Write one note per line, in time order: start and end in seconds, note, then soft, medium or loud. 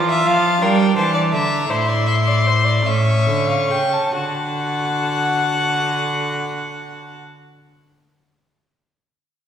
0.00 0.26 E3 medium
0.00 0.59 F4 loud
0.00 0.29 A#5 medium
0.10 0.28 E5 loud
0.27 0.61 F3 medium
0.27 0.63 F5 loud
0.27 0.63 A5 medium
0.61 0.96 G3 medium
0.61 1.67 D4 medium
0.61 0.95 A#4 loud
0.61 0.97 G5 medium
0.96 1.35 E3 medium
0.96 1.13 C5 medium
0.96 1.33 A5 medium
1.14 1.22 D5 medium
1.33 1.69 D3 medium
1.33 1.71 E5 loud
1.33 1.74 A#5 medium
1.69 2.84 A2 medium
1.69 2.83 E4 loud
1.69 1.90 C5 medium
1.69 2.89 C6 loud
1.89 2.07 D5 medium
2.07 2.15 E5 medium
2.27 2.48 D5 medium
2.47 2.66 C5 medium
2.65 2.88 D5 medium
2.85 3.29 A2 medium
2.85 4.11 C#4 medium
2.85 3.50 E5 medium
2.85 4.15 C#6 loud
3.27 3.71 D3 medium
3.49 3.72 F5 medium
3.69 4.13 C#3 medium
3.69 3.94 G5 medium
3.93 4.14 A5 medium
4.14 7.19 D3 medium
4.14 7.19 F#4 medium
4.14 7.21 F#5 medium
4.14 7.21 A5 medium